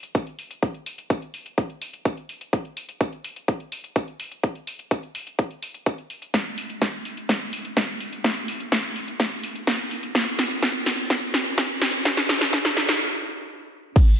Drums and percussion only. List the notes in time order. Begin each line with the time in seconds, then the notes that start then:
0.03 closed hi-hat
0.15 kick, closed hi-hat
0.27 closed hi-hat
0.39 open hi-hat
0.51 closed hi-hat
0.63 kick, closed hi-hat
0.74 closed hi-hat
0.86 open hi-hat
0.98 closed hi-hat
1.10 kick, closed hi-hat
1.22 closed hi-hat
1.34 open hi-hat
1.46 closed hi-hat
1.58 kick, closed hi-hat
1.70 closed hi-hat
1.82 open hi-hat
1.93 closed hi-hat
2.05 kick, closed hi-hat
2.17 closed hi-hat
2.29 open hi-hat
2.41 closed hi-hat
2.53 kick, closed hi-hat
2.65 closed hi-hat
2.77 open hi-hat
2.89 closed hi-hat
3.01 kick, closed hi-hat
3.13 closed hi-hat
3.24 open hi-hat
3.36 closed hi-hat
3.48 kick, closed hi-hat
3.60 closed hi-hat
3.72 open hi-hat
3.84 closed hi-hat
3.96 kick, closed hi-hat
4.08 closed hi-hat
4.20 open hi-hat
4.32 closed hi-hat
4.43 kick, closed hi-hat
4.55 closed hi-hat
4.67 open hi-hat
4.79 closed hi-hat
4.91 kick, closed hi-hat
5.03 closed hi-hat
5.15 open hi-hat
5.27 closed hi-hat
5.39 kick, closed hi-hat
5.51 closed hi-hat
5.63 open hi-hat
5.74 closed hi-hat
5.86 kick, closed hi-hat
5.98 closed hi-hat
6.10 open hi-hat
6.22 closed hi-hat
6.34 kick, snare, closed hi-hat
6.46 closed hi-hat
6.58 open hi-hat
6.70 closed hi-hat
6.82 kick, snare, closed hi-hat
6.93 closed hi-hat
7.05 open hi-hat
7.17 closed hi-hat
7.29 kick, snare, closed hi-hat
7.41 closed hi-hat
7.53 open hi-hat
7.65 closed hi-hat
7.77 kick, snare, closed hi-hat
7.89 closed hi-hat
8.01 open hi-hat
8.12 closed hi-hat
8.24 kick, snare, closed hi-hat
8.36 closed hi-hat
8.48 open hi-hat
8.60 closed hi-hat
8.72 kick, snare, closed hi-hat
8.84 closed hi-hat
8.96 open hi-hat
9.08 closed hi-hat
9.20 kick, snare, closed hi-hat
9.32 closed hi-hat
9.43 open hi-hat
9.55 closed hi-hat
9.67 kick, snare, closed hi-hat
9.79 closed hi-hat
9.91 open hi-hat
10.03 closed hi-hat
10.15 kick, snare, closed hi-hat
10.27 closed hi-hat
10.39 snare, open hi-hat
10.51 closed hi-hat
10.63 kick, snare, closed hi-hat
10.74 closed hi-hat
10.86 snare, open hi-hat
10.98 closed hi-hat
11.10 kick, snare, closed hi-hat
11.22 closed hi-hat
11.34 snare, open hi-hat
11.46 closed hi-hat
11.58 kick, snare, closed hi-hat
11.70 closed hi-hat
11.82 snare, open hi-hat
11.93 closed hi-hat
12.05 kick, snare, closed hi-hat
12.17 snare, closed hi-hat
12.29 snare, open hi-hat
12.41 snare, closed hi-hat
12.53 kick, snare, closed hi-hat
12.65 snare, closed hi-hat
12.77 snare, open hi-hat
12.89 snare, closed hi-hat
13.96 kick, closed hi-hat, crash, shaker
14.08 closed hi-hat, shaker